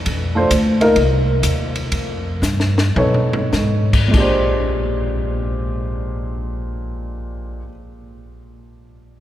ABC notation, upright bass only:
X:1
M:4/4
L:1/8
Q:"Swing" 1/4=95
K:Bbmix
V:1 name="Upright bass" clef=bass
F,,2 D,,2 C,,2 E,,2 | F,,2 G,,2 =B,,2 A,,2 | B,,,8- | B,,,8 |]